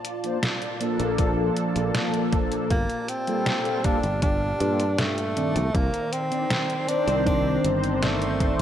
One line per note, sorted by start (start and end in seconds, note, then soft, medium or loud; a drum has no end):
0.00 5.33 A#2 medium
0.00 2.67 F4 medium
0.00 2.67 D5 medium
0.00 5.32 A5 medium
0.05 closed hi-hat medium
0.23 0.37 F3 medium
0.23 0.38 A#3 medium
0.23 0.38 D4 medium
0.23 0.38 C5 medium
0.23 closed hi-hat soft
0.43 snare loud
0.43 closed hi-hat medium
0.62 closed hi-hat soft
0.79 2.68 F3 loud
0.79 2.68 A#3 medium
0.79 2.69 D4 medium
0.79 2.69 A4 loud
0.79 closed hi-hat medium
1.00 1.49 A#1 loud
1.00 closed hi-hat soft
1.18 kick loud
1.18 closed hi-hat medium
1.57 closed hi-hat medium
1.76 1.90 A#1 medium
1.76 closed hi-hat medium
1.95 snare loud
1.95 closed hi-hat medium
2.14 closed hi-hat soft
2.33 kick loud
2.33 closed hi-hat medium
2.52 closed hi-hat medium
2.70 2.85 G1 loud
2.70 3.11 A#3 loud
2.70 5.34 G4 medium
2.70 5.34 F5 medium
2.70 kick loud
2.70 closed hi-hat medium
2.90 closed hi-hat soft
3.08 3.87 C4 loud
3.08 closed hi-hat medium
3.27 3.80 G3 medium
3.27 3.80 A#3 medium
3.27 3.80 F4 medium
3.27 3.81 A4 loud
3.27 closed hi-hat soft
3.46 snare loud
3.46 closed hi-hat medium
3.65 closed hi-hat soft
3.84 3.98 G3 medium
3.84 3.98 A#3 medium
3.84 4.23 D4 loud
3.84 3.99 F4 medium
3.84 3.99 A4 loud
3.84 kick loud
3.84 closed hi-hat medium
4.03 4.53 G1 medium
4.03 closed hi-hat soft
4.22 5.01 D4 loud
4.22 kick loud
4.22 closed hi-hat medium
4.60 5.57 G2 medium
4.60 4.82 G3 medium
4.60 4.83 A#3 medium
4.60 4.83 F4 medium
4.60 4.83 A4 medium
4.60 closed hi-hat medium
4.80 closed hi-hat soft
4.98 5.77 A3 loud
4.98 snare loud
4.98 closed hi-hat medium
5.18 closed hi-hat soft
5.36 5.58 D#3 medium
5.36 8.62 D#3 medium
5.36 5.58 C4 medium
5.36 5.59 D4 medium
5.36 8.62 C5 medium
5.36 8.62 D5 medium
5.36 5.59 D5 medium
5.36 8.62 A#5 medium
5.36 closed hi-hat medium
5.56 5.70 C2 medium
5.56 closed hi-hat medium
5.75 5.89 C2 medium
5.75 6.14 A#3 loud
5.75 kick loud
5.75 closed hi-hat medium
5.94 closed hi-hat soft
6.13 6.90 C4 loud
6.13 closed hi-hat medium
6.31 6.45 D#3 medium
6.31 6.45 C4 medium
6.31 6.45 D4 medium
6.31 6.46 D5 medium
6.31 closed hi-hat soft
6.50 snare loud
6.50 closed hi-hat medium
6.70 closed hi-hat soft
6.87 8.62 D#3 loud
6.87 8.62 C4 medium
6.87 8.62 D4 medium
6.87 7.26 D4 loud
6.87 8.62 C5 loud
6.87 closed hi-hat medium
7.07 7.56 C2 loud
7.07 closed hi-hat soft
7.27 7.72 D4 loud
7.27 kick loud
7.27 closed hi-hat medium
7.64 8.51 G1 medium
7.64 closed hi-hat medium
7.84 closed hi-hat soft
8.02 8.62 A3 medium
8.02 snare loud
8.02 closed hi-hat medium
8.22 closed hi-hat soft
8.40 kick loud
8.40 closed hi-hat medium